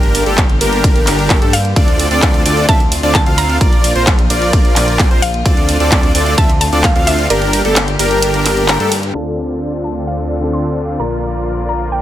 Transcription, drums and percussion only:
0.03 closed hi-hat soft
0.15 open hi-hat loud
0.15 ride medium
0.26 closed hi-hat soft
0.38 kick loud
0.38 clap loud
0.38 closed hi-hat medium
0.38 ride medium
0.49 closed hi-hat soft
0.61 open hi-hat loud
0.61 ride medium
0.73 closed hi-hat soft
0.84 kick loud
0.84 closed hi-hat medium
0.84 ride medium
0.96 closed hi-hat soft
1.07 clap medium
1.07 open hi-hat loud
1.07 ride medium
1.19 closed hi-hat soft
1.30 kick loud
1.30 clap loud
1.30 open hi-hat medium
1.30 ride medium
1.42 closed hi-hat soft
1.53 open hi-hat loud
1.53 ride medium
1.65 closed hi-hat soft
1.76 kick loud
1.76 closed hi-hat medium
1.76 ride medium
1.88 closed hi-hat soft
1.99 open hi-hat loud
1.99 ride medium
2.11 closed hi-hat soft
2.22 kick loud
2.22 clap loud
2.22 closed hi-hat medium
2.22 ride medium
2.34 closed hi-hat soft
2.46 open hi-hat loud
2.46 ride medium
2.57 closed hi-hat soft
2.69 kick loud
2.69 closed hi-hat medium
2.69 ride medium
2.80 closed hi-hat soft
2.92 open hi-hat loud
2.92 ride medium
3.03 closed hi-hat soft
3.15 kick loud
3.15 clap loud
3.15 open hi-hat medium
3.15 ride medium
3.26 closed hi-hat soft
3.38 open hi-hat loud
3.38 ride medium
3.50 closed hi-hat soft
3.61 kick loud
3.61 closed hi-hat medium
3.61 ride medium
3.73 closed hi-hat soft
3.84 open hi-hat loud
3.84 ride medium
3.96 closed hi-hat soft
4.07 kick loud
4.07 clap loud
4.07 closed hi-hat medium
4.07 ride medium
4.19 closed hi-hat soft
4.30 open hi-hat loud
4.30 ride medium
4.42 closed hi-hat soft
4.53 kick loud
4.53 closed hi-hat loud
4.53 ride medium
4.65 closed hi-hat soft
4.76 clap medium
4.76 open hi-hat loud
4.76 ride medium
4.88 closed hi-hat soft
4.99 kick loud
4.99 clap loud
4.99 open hi-hat medium
4.99 ride medium
5.11 closed hi-hat soft
5.22 open hi-hat loud
5.22 ride medium
5.34 closed hi-hat soft
5.46 kick loud
5.46 closed hi-hat medium
5.46 ride medium
5.57 closed hi-hat soft
5.69 open hi-hat loud
5.69 ride medium
5.80 closed hi-hat soft
5.92 kick loud
5.92 clap loud
5.92 closed hi-hat loud
5.92 ride medium
6.03 closed hi-hat soft
6.15 open hi-hat loud
6.15 ride medium
6.26 closed hi-hat soft
6.38 kick loud
6.38 closed hi-hat loud
6.38 ride medium
6.50 closed hi-hat soft
6.61 open hi-hat loud
6.61 ride medium
6.73 closed hi-hat soft
6.84 kick loud
6.84 clap loud
6.84 open hi-hat medium
6.84 ride medium
6.96 closed hi-hat soft
7.07 open hi-hat loud
7.07 ride medium
7.19 closed hi-hat soft
7.30 closed hi-hat medium
7.30 ride medium
7.42 closed hi-hat soft
7.53 open hi-hat loud
7.53 ride medium
7.65 closed hi-hat soft
7.76 clap loud
7.76 closed hi-hat loud
7.76 ride medium
7.88 closed hi-hat soft
7.99 open hi-hat loud
7.99 ride medium
8.11 closed hi-hat soft
8.22 closed hi-hat loud
8.22 ride medium
8.34 closed hi-hat soft
8.45 clap medium
8.45 open hi-hat loud
8.45 ride medium
8.57 closed hi-hat soft
8.68 clap loud
8.68 open hi-hat medium
8.68 ride medium
8.80 closed hi-hat soft
8.92 open hi-hat loud
8.92 ride medium
9.03 closed hi-hat soft

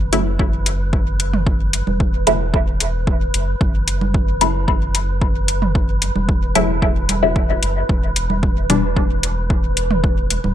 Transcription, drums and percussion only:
0.13 closed hi-hat medium
0.39 kick loud
0.66 closed hi-hat medium
0.93 kick loud
1.20 closed hi-hat medium
1.34 mid tom medium
1.47 kick loud
1.73 closed hi-hat medium
1.87 high conga medium
2.00 kick loud
2.27 closed hi-hat medium
2.54 kick loud
2.80 closed hi-hat medium
3.07 kick loud
3.34 closed hi-hat medium
3.61 kick loud
3.88 closed hi-hat medium
4.01 high conga medium
4.14 kick loud
4.41 closed hi-hat medium
4.68 kick loud
4.95 closed hi-hat medium
5.22 kick loud
5.48 closed hi-hat medium
5.62 mid tom medium
5.75 kick loud
6.02 closed hi-hat medium
6.16 high conga medium
6.29 kick loud
6.55 closed hi-hat medium
6.82 kick loud
7.09 closed hi-hat medium
7.09 high conga medium
7.36 kick loud
7.63 closed hi-hat medium
7.89 kick loud
8.16 closed hi-hat medium
8.30 high conga medium
8.43 kick loud
8.70 closed hi-hat medium
8.97 kick loud
9.23 closed hi-hat medium
9.50 kick loud
9.77 closed hi-hat medium
9.91 mid tom medium
10.04 kick loud
10.30 closed hi-hat medium
10.44 high conga medium

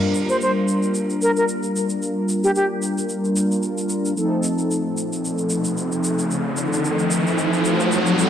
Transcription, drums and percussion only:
0.15 shaker medium
0.29 shaker soft
0.41 shaker medium
0.68 shaker medium
0.83 shaker soft
0.95 shaker medium
1.10 shaker soft
1.22 shaker medium
1.37 shaker soft
1.49 shaker medium
1.63 shaker soft
1.76 shaker medium
1.89 shaker soft
2.02 shaker soft
2.29 shaker medium
2.44 shaker soft
2.56 shaker medium
2.82 shaker medium
2.98 shaker soft
3.09 shaker medium
3.25 shaker soft
3.36 shaker medium
3.51 shaker soft
3.63 shaker soft
3.78 shaker soft
3.89 shaker medium
4.05 shaker soft
4.17 shaker soft
4.43 shaker medium
4.58 shaker soft
4.71 shaker medium
4.97 shaker medium
5.13 shaker soft
5.25 shaker medium
5.38 shaker soft
5.50 shaker medium
5.64 shaker soft
5.77 shaker soft
5.92 shaker soft
6.04 shaker medium
6.19 shaker soft
6.31 shaker medium
6.57 shaker medium
6.73 shaker soft
6.85 shaker medium
6.99 shaker soft
7.11 shaker medium
7.27 shaker soft
7.38 shaker medium
7.53 shaker soft
7.65 shaker medium
7.80 shaker soft
7.92 shaker medium
8.06 shaker soft
8.19 shaker medium

